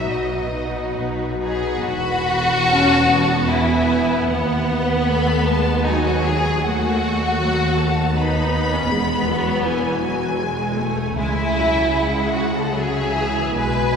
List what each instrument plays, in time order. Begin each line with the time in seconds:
Already playing: viola section F#3 D#4, violin section F#4 B4
0.10 double bass section B1, cello section B2, violin section D#5
0.53 viola section F#3 D#4, violin section F#4 B4
0.97 double bass section B1, cello section B2
1.41 viola section F#3 D#4, violin section F#4 G#4 B4
1.85 double bass section E1, cello section E2, violin section F#4 B5
2.68 viola section C#4, violin section A5
3.09 viola section B3
3.48 violin section E4 G#5
4.29 double bass section D#2, cello section D#2, violin section B3 F#5
5.09 viola section A3, violin section B5
5.47 viola section G#3, violin section A5
5.85 viola section F#3, violin section D#4 G#5
6.06 violin section F#4
6.24 violin section G#4
6.63 double bass section D#2, cello section D#2, viola section A3, violin section F#4 F#5
7.40 viola section F#3, violin section F#5
7.78 viola section A3, violin section A5
8.17 viola section B3, violin section D#4 B5
8.74 violin section C#4
8.90 double bass section E1, cello section E2, viola section G#3, violin section B3
9.27 viola section F#3
9.66 viola section E3, violin section G#5
10.03 viola section F#3
10.41 viola section G#3
10.79 viola section A3
11.17 double bass section C#2, cello section C#3, viola section G#3, violin section E4 G#5
11.58 viola section F#3
11.95 viola section G#3, violin section F#5
12.35 violin section F#4
12.56 violin section A4
12.75 viola section F#3, violin section G#4 E5
13.15 viola section E3
13.53 double bass section B1, cello section B2, viola section G#3, violin section B4 G#5